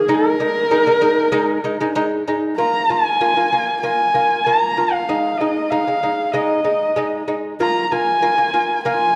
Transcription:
Already playing: horsehead fiddle G#4
0.08 lute G#3 D#4
0.14 horsehead fiddle A#4
0.40 lute G#3 D#4
0.71 lute G#3 D#4
0.87 lute G#3 D#4
1.01 lute G#3 D#4
1.32 lute G#3 D#4
1.64 lute G#3 D#4
1.80 lute G#3 D#4
1.95 lute G#3 D#4
2.28 lute G#3 D#4
2.56 lute A#3 F4, horsehead fiddle A#5
2.89 lute A#3 F4, horsehead fiddle G#5
3.21 lute A#3 F4
3.36 lute A#3 F4
3.52 lute A#3 F4
3.81 lute A#3 F4, horsehead fiddle G#5
4.14 lute A#3 F4
4.44 lute A#3 F4, horsehead fiddle A#5
4.77 lute A#3 F4
4.91 horsehead fiddle F5
5.09 lute G#3 D#4
5.37 lute G#3 D#4, horsehead fiddle D#5
5.70 lute G#3 D#4, horsehead fiddle F5
5.87 lute G#3 D#4
6.03 lute G#3 D#4
6.32 lute G#3 D#4, horsehead fiddle D#5
6.64 lute G#3 D#4
6.96 lute G#3 D#4
7.28 lute G#3 D#4
7.60 lute A#3 F4, horsehead fiddle A#5
7.83 horsehead fiddle A#5
7.91 lute A#3 F4, horsehead fiddle G#5
8.22 lute A#3 F4
8.37 lute A#3 F4
8.53 lute A#3 F4
8.84 lute A#3 F4, horsehead fiddle G#5

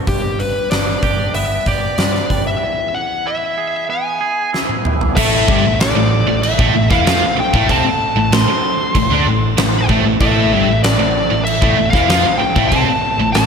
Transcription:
0.07 picked electric bass G1, clean electric guitar G2, lead electric guitar G4, kick, open hi-hat
0.39 lead electric guitar B4, open hi-hat
0.71 picked electric bass G1, clean electric guitar D4, lead electric guitar D5, snare, open hi-hat
1.03 picked electric bass G1, clean electric guitar G4, kick, open hi-hat
1.34 picked electric bass G1, clean electric guitar B3, lead electric guitar E5, open hi-hat
1.66 picked electric bass G1, clean electric guitar G4, lead electric guitar D5, kick, open hi-hat
1.98 picked electric bass G2, clean electric guitar D4, lead electric guitar D5, snare, open hi-hat
2.15 snare
2.30 picked electric bass G1, clean electric guitar G3, kick, open hi-hat
2.47 lead electric guitar E5
2.62 clean electric guitar E2
2.95 lead electric guitar F#5
3.26 clean electric guitar E4, lead electric guitar E5
3.58 clean electric guitar G#4
3.89 clean electric guitar B3, lead electric guitar G#5
4.21 clean electric guitar G#4
4.53 clean electric guitar E4, snare
4.69 high tom
4.85 clean electric guitar E3, mid tom
5.01 floor tom
5.16 picked electric bass A1, overdriven electric guitar A2 A3, tonewheel organ A3 A4, lead electric guitar E5, kick, crash
5.48 picked electric bass G1, overdriven electric guitar G2 G3, kick
5.64 picked electric bass A1, overdriven electric guitar A2
5.80 lead electric guitar D5, snare, crash
5.95 picked electric bass A1, overdriven electric guitar A2
6.26 picked electric bass A1, overdriven electric guitar A2
6.43 lead electric guitar E5, crash
6.59 picked electric bass A1, overdriven electric guitar A2 A3, kick
6.74 picked electric bass A1, overdriven electric guitar A2
6.91 picked electric bass E2, overdriven electric guitar E3 E4, lead electric guitar F5, kick, snare
7.05 picked electric bass F2, overdriven electric guitar F3 F4, snare, crash
7.22 muted distorted electric guitar stroke, muted picked electric bass stroke, muted overdriven electric guitar stroke
7.37 lead electric guitar G5, muted distorted electric guitar stroke, muted picked electric bass stroke, muted overdriven electric guitar stroke
7.54 picked electric bass A1, overdriven electric guitar A2 A3, kick
7.69 picked electric bass C2, overdriven electric guitar C3 C4, lead electric guitar A5, kick, crash
7.86 muted distorted electric guitar stroke, muted overdriven electric guitar stroke
8.16 picked electric bass A1, overdriven electric guitar A2
8.31 picked electric bass A1, overdriven electric guitar A2, lead electric guitar C6, snare, crash
8.48 muted distorted electric guitar stroke, muted overdriven electric guitar stroke
8.95 picked electric bass A1, overdriven electric guitar A2, kick, crash
9.10 picked electric bass D2, overdriven electric guitar D3 D4
9.26 picked electric bass A1, overdriven electric guitar A2
9.57 picked electric bass A1, overdriven electric guitar A2, snare, crash
9.89 picked electric bass A1, overdriven electric guitar A2 A3, kick
10.05 picked electric bass A1, overdriven electric guitar A2
10.20 picked electric bass A1, overdriven electric guitar A2 A3, lead electric guitar E5, kick, crash
10.51 picked electric bass G1, overdriven electric guitar G2 G3
10.67 picked electric bass A1, overdriven electric guitar A2
10.83 lead electric guitar D5, snare, crash
10.99 picked electric bass A1, overdriven electric guitar A2
11.31 picked electric bass A1, overdriven electric guitar A2
11.45 lead electric guitar E5, crash
11.62 picked electric bass A1, overdriven electric guitar A2 A3, kick
11.77 picked electric bass A1, overdriven electric guitar A2
11.90 picked electric bass E2, overdriven electric guitar E3 E4, lead electric guitar F5, kick, snare
12.08 picked electric bass F2, overdriven electric guitar F3 F4, snare, crash
12.24 muted picked electric bass stroke, muted distorted electric guitar stroke, muted overdriven electric guitar stroke
12.38 lead electric guitar G5, muted distorted electric guitar stroke, muted picked electric bass stroke, muted overdriven electric guitar stroke
12.56 picked electric bass A1, overdriven electric guitar A2 A3, kick
12.68 picked electric bass C2, overdriven electric guitar C3, lead electric guitar A5, kick, crash
12.73 overdriven electric guitar C4
12.86 muted picked electric bass stroke, muted overdriven electric guitar stroke, muted distorted electric guitar stroke
13.18 picked electric bass A1, overdriven electric guitar A2
13.33 picked electric bass A1, overdriven electric guitar A2, lead electric guitar A5, snare, crash

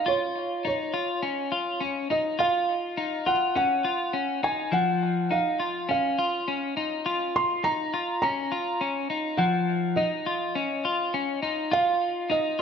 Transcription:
0.06 clean electric guitar F4, felt piano C#5
0.65 clean electric guitar D#4, felt piano C#5
0.94 clean electric guitar F4
1.23 clean electric guitar C#4
1.52 clean electric guitar F4
1.81 clean electric guitar C#4
2.10 clean electric guitar D#4, felt piano D#5
2.39 clean electric guitar F4, felt piano F5
2.97 clean electric guitar D#4
3.26 clean electric guitar F4, felt piano F#5
3.56 clean electric guitar C#4, felt piano F#5
3.84 clean electric guitar F4
4.13 clean electric guitar C#4
4.43 clean electric guitar D#4, felt piano G#5
4.72 clean electric guitar F3, felt piano F#5
5.31 clean electric guitar D#4, felt piano F5
5.60 clean electric guitar F4
5.89 clean electric guitar C#4, felt piano F5
6.19 clean electric guitar F4
6.48 clean electric guitar C#4
6.77 clean electric guitar D#4
7.06 clean electric guitar F4
7.36 felt piano C6
7.64 clean electric guitar D#4, felt piano A#5
7.94 clean electric guitar F4
8.22 clean electric guitar C#4, felt piano A#5
8.52 clean electric guitar F4
8.81 clean electric guitar C#4
9.10 clean electric guitar D#4
9.38 clean electric guitar F3, felt piano F#5
9.96 clean electric guitar D#4, felt piano D#5
10.26 clean electric guitar F4
10.55 clean electric guitar C#4
10.85 clean electric guitar F4
11.14 clean electric guitar C#4
11.42 clean electric guitar D#4
11.71 clean electric guitar F4, felt piano F5
12.30 clean electric guitar D#4, felt piano D#5

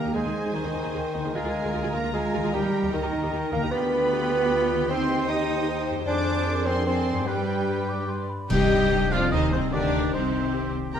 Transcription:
Already playing: harp D#3 G3 A#3 G4, bassoon A#3, cello section A#3, french horn section G4, violin section A#4 A#5, clarinet A#4, oboe A#4, flute G5
0.02 double bass section D#2, harp C4, viola section D#4
0.06 harp D#4, viola section G4
0.11 double bass section D#2, bassoon G#3, harp G#4, clarinet G#4
0.15 cello section G#3, viola section D#4 G#4, french horn section G#4, violin section C5 G#5, oboe C5, flute G#5
0.25 double bass section D#2, viola section D#4 G#4
0.45 double bass section D#2, viola section D#4 G#4
0.54 double bass section D#2, bassoon D#3, cello section D#3, clarinet D#4, viola section D#4 G#4, oboe C5, violin section D#5, flute G#5
0.64 double bass section D#2, viola section D#4 G#4
0.74 double bass section D#2, viola section D#4
0.83 double bass section D#2, viola section D#4 G#4
0.93 double bass section D#2, viola section D#4 G#4, french horn section A#4, flute G5
1.13 double bass section D#2, harp D3, viola section D#4
1.21 harp A#3, viola section D#4 G#4
1.25 double bass section D#2, harp F4
1.30 harp A#4
1.35 double bass section D2, bassoon G#3, cello section G#3, viola section F4 G#4, clarinet G#4, violin section A#4 G#5 A#5, oboe A#4, flute F5
1.44 double bass section D2, viola section F4 G#4
1.64 double bass section D2, viola section F4 G#4
1.72 double bass section D2, viola section F4 G#4, french horn section G#4
1.83 double bass section D2, viola section F4 G#4
1.93 double bass section D2, bassoon A#3, cello section A#3, viola section F4, clarinet A#4, violin section A#5
2.03 double bass section D2, viola section F4 G#4
2.13 double bass section D2, bassoon G#3, cello section G#3, viola section F4 G#4, french horn section F4, clarinet G#4, oboe A#4, flute F5, violin section G#5
2.33 double bass section D2, harp D#3, viola section F4
2.41 double bass section D2, harp A#3, viola section F4 G#4
2.45 harp G4
2.49 bassoon G3, viola section D#4 G4, clarinet G4, harp D#5
2.54 double bass section D#2, cello section G3, french horn section G4, oboe A#4, violin section G5, flute G5
2.63 double bass section D#2, viola section D#4 G4
2.83 double bass section D#2, viola section D#4 G4
2.92 double bass section D#2, bassoon D#3, cello section D#3, clarinet D#4, viola section D#4 G4, french horn section A#4, oboe A#4, violin section D#5, flute G5
3.02 double bass section D#2, viola section D#4 G4
3.12 double bass section D#2, viola section D#4
3.22 double bass section D#2, viola section D#4 G4
3.32 double bass section D#2, viola section D#4 G4
3.52 double bass section D#2, harp D3, bassoon A#3, cello section A#3, viola section D#4, clarinet A#4, violin section A#5
3.59 harp D4, viola section D#4 G4
3.63 double bass section D#2, harp G4
3.68 bassoon B3, viola section F4 G4, clarinet B4, oboe D5, harp F5, violin section B5
3.73 double bass section D2, cello section B3, french horn section B4, violin section B4 G5, flute G5
4.12 french horn section G4
4.52 french horn section F4
4.72 harp D#3
4.77 harp C4
4.82 harp G4
4.86 clarinet C5, oboe C5, harp D#5
4.90 double bass section D#2, cello section C4, bassoon C4, viola section D#4, french horn section D#4, violin section C5 C6, flute G5
5.28 cello section D#4, bassoon D#4, french horn section G4, oboe C5, clarinet D#5, flute G5, violin section D#6
5.69 french horn section C5
5.90 harp F2
5.95 harp D4
5.99 harp G#4
6.03 viola section D4 G#4, bassoon D4, harp C5, clarinet D5, violin section D5 D6
6.07 double bass section F2, cello section D4, oboe C5, flute G#5
6.47 french horn section A#4
6.65 cello section C4, bassoon C4, clarinet C5, violin section C6
6.86 bassoon C4, cello section C4, oboe C5, clarinet C5, flute G#5, violin section C6
7.10 harp G2
7.14 harp D4
7.19 harp G4
7.23 double bass section G2, bassoon G3, cello section G3, clarinet G4, viola section G4, harp B4, oboe B4, violin section B4, flute G5
7.28 french horn section B4, violin section G5
7.69 flute B5
7.89 flute D6
8.09 flute C6
8.29 flute B5
8.49 double bass section G2, harp C3, timpani C3, cello section G3, bassoon D#4, clarinet G4, viola section G4, french horn section G4, violin section D#5 G5, oboe G5, concert bass drum, crash
8.61 harp G3
8.71 harp D#4
8.92 bassoon D4, harp C5
9.01 harp D#5
9.11 double bass section F2, cello section F3, french horn section F4, clarinet F4, viola section F4, violin section D5 F5, oboe F5, harp G5
9.22 harp C6
9.32 double bass section D#2, cello section D#3, bassoon C4, french horn section D#4, viola section D#4, clarinet D#4, violin section C5 D#5, oboe D#5, harp G5
9.43 harp D#5
9.52 double bass section C2, cello section C3, viola section C4, french horn section C4, clarinet C4, violin section G#4 C5, oboe C5
9.63 harp G4
9.72 double bass section D2, cello section D3, harp D#3, french horn section D4, viola section D4, clarinet D4, bassoon G4, violin section A#4 D5, oboe D5
9.83 harp D#4
10.03 harp G4
10.12 double bass section C2, cello section C3, french horn section C4, viola section C4, clarinet C4, bassoon D#4, violin section G4 C5, harp C5, oboe C5
10.24 harp G4
10.34 harp G5
10.44 harp C6
10.54 bassoon G4, harp G5
10.65 harp C5
10.75 harp G4
10.85 harp C4
10.94 double bass section D#2, cello section D#2, harp D#3, french horn section A#3 G4, viola section A#3 G4, bassoon G4, clarinet A#4, violin section G5 A#5, oboe A#5

